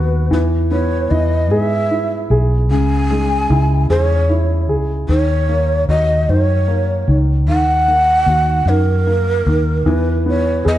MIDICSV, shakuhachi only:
0, 0, Header, 1, 2, 480
1, 0, Start_track
1, 0, Tempo, 796390
1, 187, Time_signature, 6, 3, 24, 8
1, 6499, End_track
2, 0, Start_track
2, 0, Title_t, "Shakuhachi"
2, 0, Program_c, 0, 77
2, 0, Note_on_c, 0, 71, 97
2, 166, Note_off_c, 0, 71, 0
2, 199, Note_on_c, 0, 71, 94
2, 252, Note_off_c, 0, 71, 0
2, 434, Note_on_c, 0, 73, 93
2, 667, Note_on_c, 0, 75, 93
2, 676, Note_off_c, 0, 73, 0
2, 909, Note_on_c, 0, 76, 107
2, 918, Note_off_c, 0, 75, 0
2, 1448, Note_off_c, 0, 76, 0
2, 1631, Note_on_c, 0, 80, 125
2, 2324, Note_off_c, 0, 80, 0
2, 2351, Note_on_c, 0, 72, 94
2, 2429, Note_off_c, 0, 72, 0
2, 2429, Note_on_c, 0, 73, 94
2, 2804, Note_off_c, 0, 73, 0
2, 3068, Note_on_c, 0, 73, 107
2, 3523, Note_off_c, 0, 73, 0
2, 3551, Note_on_c, 0, 75, 93
2, 3795, Note_on_c, 0, 72, 102
2, 3804, Note_off_c, 0, 75, 0
2, 3867, Note_off_c, 0, 72, 0
2, 3867, Note_on_c, 0, 73, 102
2, 4330, Note_off_c, 0, 73, 0
2, 4510, Note_on_c, 0, 78, 125
2, 5235, Note_on_c, 0, 70, 110
2, 5244, Note_off_c, 0, 78, 0
2, 5951, Note_on_c, 0, 71, 98
2, 5960, Note_off_c, 0, 70, 0
2, 6189, Note_off_c, 0, 71, 0
2, 6201, Note_on_c, 0, 73, 95
2, 6417, Note_off_c, 0, 73, 0
2, 6436, Note_on_c, 0, 75, 98
2, 6489, Note_off_c, 0, 75, 0
2, 6499, End_track
0, 0, End_of_file